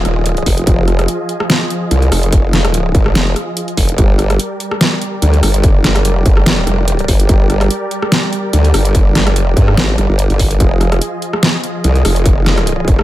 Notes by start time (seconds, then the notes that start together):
Already playing: F3 F4 G#4 D#5
0.05 D#1, cross-stick, closed hi-hat
0.26 closed hi-hat
0.37 closed hi-hat
0.46 F1, kick, open hi-hat
0.58 closed hi-hat
0.67 F1, kick, closed hi-hat
0.88 cross-stick, closed hi-hat
0.99 cross-stick, closed hi-hat
1.08 closed hi-hat
1.29 closed hi-hat
1.40 cross-stick
1.50 snare, closed hi-hat
1.70 closed hi-hat
1.91 C2, closed hi-hat
2.02 closed hi-hat
2.12 F1, cross-stick, open hi-hat
2.23 closed hi-hat
2.33 kick, closed hi-hat
2.53 cross-stick, snare, closed hi-hat
2.65 cross-stick, closed hi-hat
2.74 closed hi-hat
2.95 G#1, kick, closed hi-hat
3.06 cross-stick
3.15 F1, snare, closed hi-hat
3.36 cross-stick, closed hi-hat
3.57 closed hi-hat
3.68 closed hi-hat
3.77 F1, kick, open hi-hat
3.89 closed hi-hat
3.98 G1 G3 G4 A#4 D5, kick, closed hi-hat
4.19 cross-stick, closed hi-hat
4.30 cross-stick, closed hi-hat
4.39 closed hi-hat
4.60 closed hi-hat
4.71 cross-stick
4.81 snare, closed hi-hat
5.02 closed hi-hat
5.22 D2, closed hi-hat
5.33 closed hi-hat
5.43 G1, cross-stick, open hi-hat
5.54 closed hi-hat
5.64 kick, closed hi-hat
5.84 cross-stick, snare, closed hi-hat
5.96 cross-stick, closed hi-hat
6.00 F#1
6.05 closed hi-hat
6.26 G1, kick, closed hi-hat
6.37 cross-stick
6.46 snare, closed hi-hat
6.67 F1, cross-stick, closed hi-hat
6.88 closed hi-hat
6.99 closed hi-hat
7.08 G1, kick, open hi-hat
7.20 closed hi-hat
7.29 G1, kick, closed hi-hat
7.50 cross-stick, closed hi-hat
7.61 cross-stick, closed hi-hat
7.71 closed hi-hat
7.91 closed hi-hat
8.02 cross-stick
8.12 snare, closed hi-hat
8.33 closed hi-hat
8.53 D2, closed hi-hat
8.65 closed hi-hat
8.74 G1, cross-stick, open hi-hat
8.85 closed hi-hat
8.95 kick, closed hi-hat
9.15 cross-stick, snare, closed hi-hat
9.27 cross-stick, closed hi-hat
9.31 F#1
9.36 closed hi-hat
9.57 G2, kick, closed hi-hat
9.68 cross-stick
9.77 G#1, snare, closed hi-hat
9.98 G1, cross-stick, closed hi-hat
10.09 G1
10.19 closed hi-hat
10.30 G1, closed hi-hat
10.39 kick, open hi-hat
10.51 closed hi-hat
10.60 F1 F3 F4 G#4 D#5, kick, closed hi-hat
10.81 cross-stick, closed hi-hat
10.92 cross-stick, closed hi-hat
11.02 closed hi-hat
11.22 closed hi-hat
11.33 cross-stick
11.43 snare, closed hi-hat
11.64 closed hi-hat
11.84 C2, closed hi-hat
11.95 closed hi-hat
12.05 F1, cross-stick, open hi-hat
12.16 closed hi-hat
12.26 kick, closed hi-hat
12.46 cross-stick, snare, closed hi-hat
12.58 cross-stick, closed hi-hat
12.67 closed hi-hat
12.88 F1, kick, closed hi-hat
12.99 cross-stick